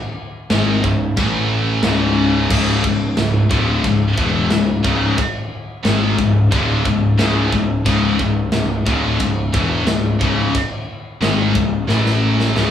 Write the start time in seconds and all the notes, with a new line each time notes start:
0.50 G#1 G#2 D#3 G#3, snare, china
0.83 C#1 C#2 G#2, kick
1.16 A1 A2 E3 A3, kick, china
1.83 C#1 C#2 G#2 C#3, snare, china
2.49 C#1 C#2 G#2 C#3, kick, china, crash
2.84 C#1 C#2 G#2, kick
3.17 C#1 C#2 G#2, snare, china
3.51 D1 D2 A2 D3, kick
3.84 C#1 C#2 G#2, kick, china
4.17 E1 E2 B2 E3, kick
4.51 C#1 C#2 G#2, snare, china
4.84 C#1 C#2 G#2 C#3, kick
5.18 kick, china
5.85 G#1 G#2 D#3 G#3, snare, china
6.19 C#1 C#2 G#2, kick
6.51 D1 D2 A2 D3, kick, china
6.85 C#1 C#2 G#2, kick
7.18 C#1 C#2 G#2 C#3, snare, china
7.52 C#1 C#2 G#2, kick
7.84 C#1 C#2 G#2 C#3, kick, china
8.19 C#1 C#2 G#2, kick
8.52 C#1 C#2 G#2, snare, china
8.86 D1 D2 A2 D3, kick
9.20 C#1 C#2 G#2, kick, china
9.52 E1 E2 B2 E3, kick
9.87 C#1 C#2 G#2, snare, china
10.21 C#1 C#2 G#2 C#3, kick
10.55 kick, china
11.21 G#1 G#2 D#3 G#3, snare, china
11.55 C#1 C#2 G#2, kick
11.88 A1 A2 E3 A3, snare
12.06 snare
12.40 snare
12.55 C#1 C#2 G#2 C#3, snare